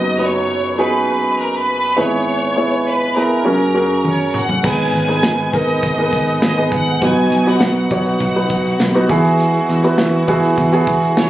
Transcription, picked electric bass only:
0, 0, Header, 1, 2, 480
1, 0, Start_track
1, 0, Key_signature, 5, "major"
1, 0, Tempo, 593472
1, 1834, Time_signature, 4, 2, 24, 8
1, 9139, End_track
2, 0, Start_track
2, 0, Title_t, "Picked electric bass"
2, 0, Program_c, 0, 34
2, 3753, Note_on_c, 0, 32, 81
2, 3951, Note_off_c, 0, 32, 0
2, 3992, Note_on_c, 0, 32, 80
2, 4190, Note_off_c, 0, 32, 0
2, 4232, Note_on_c, 0, 32, 85
2, 4430, Note_off_c, 0, 32, 0
2, 4476, Note_on_c, 0, 32, 74
2, 4673, Note_off_c, 0, 32, 0
2, 4716, Note_on_c, 0, 32, 89
2, 4913, Note_off_c, 0, 32, 0
2, 4957, Note_on_c, 0, 32, 83
2, 5153, Note_off_c, 0, 32, 0
2, 5198, Note_on_c, 0, 32, 90
2, 5394, Note_off_c, 0, 32, 0
2, 5435, Note_on_c, 0, 32, 84
2, 5632, Note_off_c, 0, 32, 0
2, 5679, Note_on_c, 0, 35, 84
2, 5874, Note_off_c, 0, 35, 0
2, 5919, Note_on_c, 0, 35, 73
2, 6114, Note_off_c, 0, 35, 0
2, 6159, Note_on_c, 0, 35, 81
2, 6354, Note_off_c, 0, 35, 0
2, 6397, Note_on_c, 0, 35, 86
2, 6593, Note_off_c, 0, 35, 0
2, 6635, Note_on_c, 0, 35, 88
2, 6832, Note_off_c, 0, 35, 0
2, 6875, Note_on_c, 0, 35, 84
2, 7072, Note_off_c, 0, 35, 0
2, 7118, Note_on_c, 0, 35, 96
2, 7314, Note_off_c, 0, 35, 0
2, 7355, Note_on_c, 0, 40, 99
2, 7749, Note_off_c, 0, 40, 0
2, 7837, Note_on_c, 0, 40, 78
2, 8033, Note_off_c, 0, 40, 0
2, 8073, Note_on_c, 0, 40, 81
2, 8270, Note_off_c, 0, 40, 0
2, 8315, Note_on_c, 0, 40, 84
2, 8511, Note_off_c, 0, 40, 0
2, 8555, Note_on_c, 0, 40, 94
2, 8752, Note_off_c, 0, 40, 0
2, 8794, Note_on_c, 0, 40, 93
2, 8991, Note_off_c, 0, 40, 0
2, 9036, Note_on_c, 0, 40, 90
2, 9139, Note_off_c, 0, 40, 0
2, 9139, End_track
0, 0, End_of_file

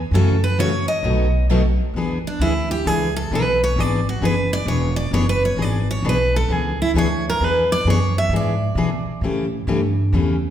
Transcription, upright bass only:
0, 0, Header, 1, 3, 480
1, 0, Start_track
1, 0, Tempo, 454890
1, 134, Time_signature, 4, 2, 24, 8
1, 11082, End_track
2, 0, Start_track
2, 0, Title_t, "Upright bass"
2, 0, Program_c, 0, 32
2, 117, Note_on_c, 0, 42, 80
2, 892, Note_off_c, 0, 42, 0
2, 1085, Note_on_c, 0, 35, 91
2, 1856, Note_off_c, 0, 35, 0
2, 2043, Note_on_c, 0, 40, 76
2, 2331, Note_off_c, 0, 40, 0
2, 2525, Note_on_c, 0, 38, 83
2, 2995, Note_off_c, 0, 38, 0
2, 3011, Note_on_c, 0, 37, 88
2, 3478, Note_off_c, 0, 37, 0
2, 3493, Note_on_c, 0, 35, 81
2, 3960, Note_off_c, 0, 35, 0
2, 3969, Note_on_c, 0, 32, 87
2, 4437, Note_off_c, 0, 32, 0
2, 4444, Note_on_c, 0, 30, 84
2, 4908, Note_off_c, 0, 30, 0
2, 4914, Note_on_c, 0, 28, 87
2, 5386, Note_off_c, 0, 28, 0
2, 5393, Note_on_c, 0, 30, 85
2, 5869, Note_off_c, 0, 30, 0
2, 5875, Note_on_c, 0, 32, 82
2, 6350, Note_off_c, 0, 32, 0
2, 6357, Note_on_c, 0, 35, 87
2, 6831, Note_off_c, 0, 35, 0
2, 6842, Note_on_c, 0, 37, 86
2, 7313, Note_off_c, 0, 37, 0
2, 7322, Note_on_c, 0, 38, 81
2, 7793, Note_off_c, 0, 38, 0
2, 7811, Note_on_c, 0, 40, 81
2, 8276, Note_off_c, 0, 40, 0
2, 8282, Note_on_c, 0, 42, 85
2, 8744, Note_off_c, 0, 42, 0
2, 8751, Note_on_c, 0, 44, 91
2, 9226, Note_off_c, 0, 44, 0
2, 9235, Note_on_c, 0, 47, 84
2, 9526, Note_off_c, 0, 47, 0
2, 9721, Note_on_c, 0, 45, 74
2, 10191, Note_off_c, 0, 45, 0
2, 10204, Note_on_c, 0, 43, 87
2, 10673, Note_off_c, 0, 43, 0
2, 10685, Note_on_c, 0, 40, 89
2, 11082, Note_off_c, 0, 40, 0
2, 11082, End_track
3, 0, Start_track
3, 0, Title_t, "Muted upright bass strokes"
3, 2359, Note_on_c, 9, 29, 34
3, 2464, Note_off_c, 9, 29, 0
3, 9550, Note_on_c, 9, 29, 35
3, 9655, Note_off_c, 9, 29, 0
3, 11082, End_track
0, 0, End_of_file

